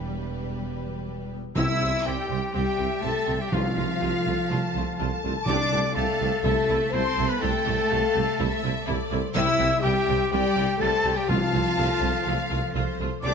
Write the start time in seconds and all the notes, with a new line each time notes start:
Already playing: E1 E2 E3 G3 G4 B4
0.08 G3
0.34 B3
0.58 G3
0.82 G4
1.08 G3
1.33 B3
1.56 C2 C3 C4 E4 G4 E5 E6
1.80 C2 C4 G4
2.05 C2 G3 C4 G4 G5
2.29 C2 C4 G4 C5
2.53 C2 G3 C4 G4 E5 G5
2.57 G4
2.78 C2 C4 G4
3.02 C2 A3 C4 G4 A4 A5
3.06 A4
3.27 C2 C4 G4 C5
3.40 G3 G4 G5
3.51 C2 C3 F3 A3 F4 F5
3.76 C2 A3 C4 F4
4.01 C2 A3 F4 A4
4.25 C2 A3 F4 C5
4.49 C2 A3 F4 A5
4.74 C2 A3 C4 F4
4.96 C2 A3 F4 A4 A5
5.23 C2 A3 F4 C5
5.46 C2 C3 A3 D4 G4 D5 D6
5.71 C2 A3 G4
5.95 C2 A3 G4 A4 F5 A5
6.21 C2 A3 G4 A4
6.40 C3 A4 E5
6.44 C2 C3 A3 E4 A4 A5
6.69 C2 A3 E4
6.90 C2 A3 C4 E4 A4 C5 A5 C6
6.94 C2 C6
7.18 C2 A3 E4
7.28 B3 B4 B5
7.40 C2 C3 A3 G4 A4 G5 A5
7.65 C2 A3 G4
7.89 C2 A3 G4 F5
8.14 C2 A3 G4 A4
8.39 C2 C3 A3 E4 E5
8.63 C2 A3 C4 E4
8.86 C2 A3 E4 A4 D5
9.11 C2 A3 E4 C5
9.33 C2 C3 G3 E4 G4 C5 E5 E6
9.59 C2 G3 C4 G4
9.81 C2 G3 G4 E5 G5
9.85 C2 G3
10.07 C2 G3 G4 C5
10.30 C2 G3 G4 D5 G5
10.55 C2 G3 C4 G4
10.78 C2 G3 A3 G4 A4 C5 A5
10.83 A5
11.04 C2 G3 G4 C5
11.16 G3 G4 G5
11.28 C2 C3 F3 A3 F4 F5 A5
11.53 C2 A3 C4 F4
11.78 C2 A3 F4 A4
12.02 C2 A3 F4 C5
12.24 C2 A3 F4 F5
12.50 C2 A3 C4 F4
12.74 C2 A3 F4 A4 C5
12.99 C2 A3 F4 C5
13.21 C2 C3 D4 A4 D5 D6
13.26 A3 G4